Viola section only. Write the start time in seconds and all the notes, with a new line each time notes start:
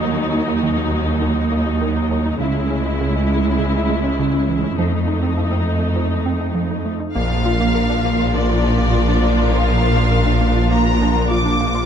Already playing: F#3 D#4
2.40 G#3 E4
4.78 A3 D#4
7.15 F3 D4